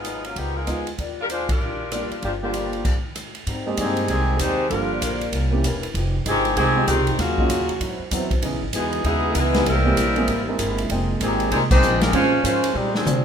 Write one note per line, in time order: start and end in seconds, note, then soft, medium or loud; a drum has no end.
0.00 0.33 G#1 medium
0.00 0.25 G#3 medium
0.00 0.25 B3 medium
0.00 0.25 D#4 medium
0.00 0.25 F4 medium
0.05 0.25 G#2 soft
0.05 0.26 F#3 soft
0.05 0.26 B3 medium
0.05 0.26 D#4 medium
0.05 hi-hat pedal soft
0.05 ride medium
0.24 0.36 F#3 medium
0.24 0.36 A#3 medium
0.24 0.36 C#4 medium
0.24 0.36 F4 medium
0.24 ride soft
0.36 0.65 C#2 medium
0.36 0.57 C#3 soft
0.36 0.57 D#3 medium
0.36 0.57 F3 soft
0.36 0.55 G#3 medium
0.36 0.57 B3 soft
0.36 0.57 B3 medium
0.36 0.58 D#4 soft
0.36 0.56 G4 medium
0.36 kick soft
0.36 ride medium
0.56 0.87 G#3 medium
0.56 0.87 D#4 medium
0.56 0.87 F4 medium
0.56 0.87 A#4 medium
0.67 0.96 D2 medium
0.67 0.88 C#3 medium
0.67 0.88 F3 medium
0.67 0.84 G#3 medium
0.67 0.85 B3 soft
0.67 0.88 B3 medium
0.67 0.85 D#4 soft
0.67 0.88 D#4 medium
0.67 0.85 F4 medium
0.67 cross-stick medium
0.67 hi-hat pedal soft
0.67 ride medium
0.87 ride soft
0.98 1.57 D#2 medium
0.98 1.19 D#3 medium
0.98 1.19 G3 soft
0.98 1.20 D4 medium
0.98 1.20 F4 soft
0.98 kick soft
0.98 ride soft
1.21 1.25 G3 medium
1.21 1.26 D4 medium
1.21 1.26 F4 medium
1.21 1.26 A#4 medium
1.30 1.50 D#3 soft
1.30 1.50 G3 medium
1.30 1.49 G#3 medium
1.30 1.51 D4 medium
1.30 1.49 D4 medium
1.30 1.51 F4 medium
1.30 1.49 F4 medium
1.30 1.48 C5 medium
1.30 hi-hat pedal soft
1.30 ride medium
1.49 2.20 G3 medium
1.49 2.20 D4 medium
1.49 2.20 F4 medium
1.49 2.20 A#4 medium
1.49 kick medium
1.49 ride medium
1.60 2.07 A#1 medium
1.60 1.81 D#3 soft
1.60 1.81 G3 soft
1.60 1.82 D4 soft
1.60 1.82 F4 soft
1.91 2.12 D#3 medium
1.91 2.09 G3 soft
1.91 2.12 G3 medium
1.91 2.09 A#3 soft
1.91 2.12 D4 medium
1.91 2.09 D4 soft
1.91 2.13 F4 medium
1.91 2.10 F4 medium
1.91 cross-stick medium
1.91 hi-hat pedal medium
1.91 ride medium
2.10 muted upright bass stroke soft
2.10 ride soft
2.22 2.82 G1 medium
2.22 2.43 D#3 soft
2.22 2.33 F3 medium
2.22 2.43 G3 soft
2.22 2.33 A#3 medium
2.22 2.44 D4 soft
2.22 2.32 D4 medium
2.22 2.44 F4 soft
2.22 2.33 G4 medium
2.22 kick soft
2.22 ride soft
2.42 3.00 A#2 medium
2.42 3.00 D3 medium
2.42 3.01 F3 medium
2.42 3.00 G3 medium
2.42 2.83 G3 medium
2.42 2.83 A#3 medium
2.42 3.01 A#3 medium
2.42 2.83 D4 medium
2.42 3.01 D4 medium
2.42 2.84 F4 medium
2.42 3.01 G4 medium
2.53 2.75 D#3 soft
2.53 2.75 G3 medium
2.53 2.75 D4 soft
2.53 2.75 F4 medium
2.53 hi-hat pedal soft
2.53 ride medium
2.73 ride soft
2.85 kick medium
2.85 crash medium
2.85 ride soft
3.15 cross-stick medium
3.15 hi-hat pedal soft
3.15 ride medium
3.35 ride soft
3.47 3.77 G#2 medium
3.47 3.68 G#2 soft
3.47 3.68 G3 medium
3.47 3.68 C4 medium
3.47 3.69 D#4 medium
3.47 kick soft
3.47 ride medium
3.66 4.07 G#3 medium
3.66 4.07 A#3 medium
3.66 4.07 C4 medium
3.66 4.07 D#4 medium
3.66 4.07 G4 medium
3.77 4.08 G2 medium
3.77 3.98 G#2 medium
3.77 4.06 C3 medium
3.77 4.06 D#3 medium
3.77 4.08 D#3 medium
3.77 3.98 G3 medium
3.77 4.07 C4 medium
3.77 3.99 C4 medium
3.77 4.08 C4 medium
3.77 3.99 D#4 medium
3.77 4.08 G4 medium
3.77 4.09 G#4 medium
3.77 kick soft
3.77 hi-hat pedal soft
3.77 ride medium
3.97 ride soft
4.07 4.39 C2 medium
4.07 4.29 G#2 soft
4.07 4.37 C3 medium
4.07 4.37 D#3 medium
4.07 4.38 D#3 medium
4.07 4.30 G3 soft
4.07 4.37 G#3 medium
4.07 4.38 C4 medium
4.07 4.30 C4 soft
4.07 4.30 D#4 soft
4.07 4.38 G4 medium
4.07 4.38 G#4 medium
4.07 kick soft
4.07 ride medium
4.38 4.70 D#2 loud
4.38 4.60 G#2 medium
4.38 4.70 D#3 medium
4.38 4.61 G3 medium
4.38 4.71 G#3 medium
4.38 4.70 C4 medium
4.38 4.61 C4 medium
4.38 4.71 D#4 medium
4.38 4.61 D#4 medium
4.38 4.70 G4 medium
4.38 4.71 G4 medium
4.38 4.71 C5 loud
4.38 kick soft
4.38 hi-hat pedal medium
4.38 ride medium
4.68 5.01 G1 medium
4.68 5.28 D3 medium
4.68 5.28 F3 medium
4.68 4.92 F3 soft
4.68 5.59 G3 medium
4.68 4.88 G3 medium
4.68 5.59 A#3 medium
4.68 4.88 A#3 medium
4.68 5.28 D4 medium
4.68 4.89 D4 medium
4.68 5.28 F4 medium
4.68 4.89 F4 medium
4.68 4.89 A4 medium
4.68 5.59 A#4 medium
4.68 kick soft
4.68 ride medium
4.72 4.92 A#3 soft
4.72 4.93 D4 soft
5.01 5.32 A#1 medium
5.01 5.22 G2 medium
5.01 5.22 F3 medium
5.01 5.23 A#3 medium
5.01 5.23 D4 medium
5.01 kick soft
5.01 hi-hat pedal medium
5.01 ride medium
5.21 ride soft
5.32 5.63 C2 medium
5.32 5.53 C3 medium
5.32 5.54 E3 soft
5.32 5.54 A#3 medium
5.32 5.54 C#4 medium
5.32 kick soft
5.32 ride medium
5.51 5.62 A#3 medium
5.51 5.63 C4 medium
5.51 5.63 C#4 medium
5.51 5.63 E4 medium
5.51 5.63 G4 medium
5.63 5.94 E1 medium
5.63 5.84 C3 medium
5.63 5.85 E3 medium
5.63 5.85 A#3 medium
5.63 5.85 C#4 medium
5.63 kick soft
5.63 hi-hat pedal medium
5.63 ride medium
5.83 ride medium
5.94 6.25 F1 medium
5.94 6.16 F3 medium
5.94 6.16 G#3 medium
5.94 6.16 D#4 medium
5.94 6.17 G4 medium
5.94 kick soft
5.94 ride medium
6.24 6.56 G1 medium
6.24 6.54 C3 medium
6.24 6.53 D#3 medium
6.24 6.47 F3 medium
6.24 6.54 G#3 medium
6.24 6.47 G#3 medium
6.24 6.47 D#4 medium
6.24 6.47 G4 medium
6.24 kick soft
6.24 hi-hat pedal medium
6.24 ride medium
6.28 6.56 D#3 medium
6.28 6.56 C4 medium
6.28 6.56 G4 medium
6.28 6.56 G#4 loud
6.45 ride soft
6.55 6.87 C2 medium
6.55 6.85 C3 medium
6.55 6.84 D#3 medium
6.55 6.86 D#3 medium
6.55 6.77 F3 soft
6.55 6.85 G#3 medium
6.55 6.78 G#3 medium
6.55 6.87 C4 loud
6.55 6.78 D#4 medium
6.55 6.86 G4 loud
6.55 6.86 G#4 loud
6.55 kick soft
6.55 ride medium
6.59 6.79 G4 soft
6.76 6.87 G#3 medium
6.76 6.87 C4 medium
6.76 6.87 D#4 medium
6.76 6.87 F4 medium
6.76 6.88 G4 medium
6.85 6.98 C#2 loud
6.85 7.16 C3 medium
6.85 7.15 D#3 medium
6.85 7.17 D#3 medium
6.85 7.09 F3 medium
6.85 7.17 G#3 medium
6.85 7.09 G#3 medium
6.85 7.17 C4 medium
6.85 7.09 D#4 medium
6.85 7.16 G4 medium
6.85 7.17 G4 medium
6.85 kick soft
6.85 hi-hat pedal medium
6.85 ride medium
6.90 7.09 G4 medium
6.98 7.08 C2 medium
7.07 7.18 G#1 medium
7.07 ride soft
7.16 7.49 D#2 medium
7.16 7.79 A#2 medium
7.16 7.80 C#3 medium
7.16 7.81 C#3 medium
7.16 7.39 D#3 soft
7.16 8.10 F#3 medium
7.16 7.40 F#3 soft
7.16 7.81 A#3 medium
7.16 7.81 F4 medium
7.16 8.12 F#4 medium
7.16 kick soft
7.16 snare soft
7.16 ride medium
7.20 7.40 C#4 soft
7.20 7.40 F4 soft
7.38 7.49 F#3 medium
7.38 7.49 A#3 medium
7.38 7.49 C#4 medium
7.38 7.49 D#4 medium
7.38 7.50 F4 medium
7.38 kick medium
7.49 7.59 F2 medium
7.49 7.70 D#3 soft
7.49 7.70 F#3 medium
7.49 7.71 C#4 medium
7.49 7.71 F4 medium
7.49 kick soft
7.49 hi-hat pedal medium
7.49 ride medium
7.59 7.69 D#2 medium
7.69 7.79 C#2 medium
7.69 ride soft
7.81 7.99 G#2 medium
7.81 8.01 G#2 medium
7.81 8.02 F#3 medium
7.81 8.02 C4 medium
7.81 8.02 E4 medium
7.81 kick soft
7.81 ride medium
7.99 muted upright bass stroke soft
8.11 8.42 E2 loud
8.11 8.32 G#2 medium
8.11 8.32 F#3 medium
8.11 8.29 F#3 medium
8.11 8.29 B3 medium
8.11 8.33 C4 medium
8.11 8.30 C4 soft
8.11 8.30 E4 medium
8.11 8.33 E4 medium
8.11 8.30 F#4 medium
8.11 kick soft
8.11 hi-hat pedal medium
8.11 ride medium
8.31 kick medium
8.31 ride soft
8.42 8.52 C#2 medium
8.42 8.63 C#3 medium
8.42 8.60 E3 medium
8.42 8.63 E3 medium
8.42 8.60 B3 soft
8.42 8.64 B3 medium
8.42 8.60 C#4 soft
8.42 8.60 D#4 medium
8.42 8.64 D#4 medium
8.42 8.60 G#4 medium
8.42 kick soft
8.42 ride medium
8.52 8.62 B1 soft
8.63 8.73 G#1 medium
8.73 9.03 E2 medium
8.73 9.02 B2 medium
8.73 8.94 C#3 medium
8.73 9.02 E3 medium
8.73 8.94 E3 medium
8.73 9.04 E3 medium
8.73 9.02 G#3 medium
8.73 8.94 B3 medium
8.73 9.04 B3 medium
8.73 8.94 D#4 medium
8.73 9.03 D#4 medium
8.73 9.04 G#4 medium
8.73 kick soft
8.73 hi-hat pedal medium
8.73 ride medium
8.93 ride soft
9.04 9.34 D#2 medium
9.04 9.33 B2 medium
9.04 9.33 C#3 medium
9.04 9.25 C#3 soft
9.04 9.26 E3 soft
9.04 9.33 G#3 medium
9.04 9.26 B3 medium
9.04 9.35 B3 medium
9.04 9.34 D#4 medium
9.04 9.26 D#4 medium
9.04 9.34 E4 medium
9.04 9.35 G#4 loud
9.04 kick soft
9.04 ride medium
9.34 9.65 C#2 loud
9.34 9.56 C#3 medium
9.34 9.65 E3 medium
9.34 9.56 E3 medium
9.34 9.66 G#3 medium
9.34 9.67 G#3 medium
9.34 9.66 B3 medium
9.34 9.56 B3 medium
9.34 9.56 D#4 medium
9.34 9.67 D#4 medium
9.34 9.67 E4 medium
9.34 9.67 B4 loud
9.34 kick soft
9.34 hi-hat pedal medium
9.34 ride medium
9.54 9.66 G#3 medium
9.54 9.66 A#3 medium
9.54 9.66 C4 medium
9.54 9.66 E4 medium
9.54 9.66 G4 medium
9.54 snare medium
9.54 ride soft
9.66 9.96 C2 medium
9.66 9.86 C3 soft
9.66 10.59 E3 medium
9.66 10.60 G3 medium
9.66 10.61 G3 medium
9.66 9.87 G#3 soft
9.66 10.60 A#3 medium
9.66 9.87 A#3 medium
9.66 10.60 C4 medium
9.66 9.88 E4 soft
9.66 10.61 E4 medium
9.66 10.61 A#4 loud
9.66 kick soft
9.66 ride medium
9.85 9.96 G#3 medium
9.85 9.96 A#3 medium
9.85 9.96 C4 medium
9.85 9.96 E4 medium
9.85 9.96 G4 medium
9.97 10.27 A#1 medium
9.97 10.18 C3 medium
9.97 10.18 G#3 medium
9.97 10.18 A#3 medium
9.97 10.19 E4 medium
9.97 kick soft
9.97 hi-hat pedal medium
9.97 ride medium
10.16 10.27 G#3 medium
10.16 10.27 A#3 medium
10.16 10.27 C4 medium
10.16 10.27 E4 medium
10.16 10.27 G#4 medium
10.16 ride soft
10.28 10.58 G#1 medium
10.28 10.49 C3 medium
10.28 10.49 G#3 medium
10.28 10.49 A#3 medium
10.28 10.50 E4 medium
10.28 kick soft
10.28 ride medium
10.48 10.88 G#3 medium
10.48 10.88 A#3 medium
10.48 10.88 C4 medium
10.48 10.88 E4 medium
10.48 10.89 A#4 medium
10.58 10.89 G1 medium
10.58 10.79 C3 medium
10.58 10.80 G#3 medium
10.58 10.80 A#3 medium
10.58 10.80 E4 medium
10.58 kick soft
10.58 hi-hat pedal medium
10.58 ride medium
10.78 ride medium
10.89 11.20 F1 medium
10.89 11.10 F3 medium
10.89 11.76 G#3 medium
10.89 11.76 A#3 soft
10.89 11.11 A#3 medium
10.89 11.76 C4 soft
10.89 11.76 D#4 soft
10.89 11.11 D#4 medium
10.89 11.11 G#4 medium
10.89 11.76 G5 medium
10.89 kick soft
10.89 ride medium
11.21 11.51 G#1 medium
11.21 11.50 C3 medium
11.21 11.50 D#3 medium
11.21 11.51 D#3 medium
11.21 11.42 F3 medium
11.21 11.50 G#3 medium
11.21 11.42 A#3 medium
11.21 11.51 C4 medium
11.21 11.42 D#4 medium
11.21 11.51 G4 medium
11.21 11.42 G#4 medium
11.21 11.51 G#4 medium
11.21 kick soft
11.21 hi-hat pedal medium
11.21 ride medium
11.40 ride soft
11.51 11.81 C2 medium
11.51 11.61 C3 medium
11.51 11.61 D#3 medium
11.51 11.72 F3 soft
11.51 11.61 G3 medium
11.51 11.61 G#3 medium
11.51 11.73 A#3 soft
11.51 11.61 C4 medium
11.51 11.73 D#4 medium
11.51 11.61 G#4 medium
11.51 11.73 G#4 medium
11.51 kick soft
11.51 ride medium
11.69 11.98 D#3 medium
11.69 11.99 G#3 medium
11.69 12.01 G#3 medium
11.69 11.99 C4 medium
11.69 12.01 D#4 medium
11.69 12.00 G4 medium
11.69 12.01 C5 loud
11.69 kick medium
11.69 crash medium
11.82 12.12 A#1 loud
11.82 12.03 F3 medium
11.82 12.03 A#3 medium
11.82 12.04 D#4 medium
11.82 12.04 G#4 medium
11.82 hi-hat pedal soft
11.99 12.12 C3 medium
11.99 12.12 D#3 medium
11.99 12.14 G#3 medium
11.99 12.12 A#3 medium
11.99 12.14 D#4 medium
11.99 12.14 G4 medium
11.99 12.14 A#4 medium
11.99 snare medium
11.99 ride medium
12.11 12.43 A#2 medium
12.11 12.41 F3 medium
12.11 12.41 G#3 medium
12.11 12.31 G#3 medium
12.11 12.43 G#3 medium
12.11 12.31 A#3 medium
12.11 12.31 C4 medium
12.11 12.42 C#4 medium
12.11 12.31 C#4 medium
12.11 12.34 C#4 soft
12.11 12.31 F4 medium
12.11 12.43 F4 medium
12.11 12.35 G#4 soft
12.11 12.43 C5 loud
12.11 kick soft
12.11 ride medium
12.15 12.43 C#4 medium
12.15 12.35 C5 soft
12.43 12.74 G#2 medium
12.43 12.73 F3 medium
12.43 12.73 G#3 medium
12.43 12.65 A#3 medium
12.43 12.73 C#4 medium
12.43 12.65 C#4 medium
12.43 12.74 C#4 medium
12.43 12.75 F4 medium
12.43 12.66 G#4 medium
12.43 12.66 C5 medium
12.43 12.74 C5 loud
12.43 kick soft
12.43 hi-hat pedal medium
12.43 ride medium
12.47 12.75 G#3 medium
12.64 ride medium
12.74 13.05 A#2 medium
12.74 12.96 A#2 soft
12.74 12.96 D#3 medium
12.74 12.94 G3 medium
12.74 12.96 G#3 soft
12.74 12.96 G#3 medium
12.74 12.96 C4 medium
12.74 12.97 D4 medium
12.74 12.96 G4 medium
12.94 13.23 D3 medium
12.94 13.23 F3 medium
12.94 13.25 F3 medium
12.94 13.23 G#3 medium
12.94 13.25 C4 medium
12.94 13.25 D4 medium
12.94 13.25 G#4 medium
12.94 snare medium
13.06 13.25 A#2 medium
13.06 13.24 C3 medium
13.06 13.25 G#3 medium
13.06 13.25 C4 medium
13.06 13.25 D4 medium
13.06 hi-hat pedal medium
13.06 mid tom medium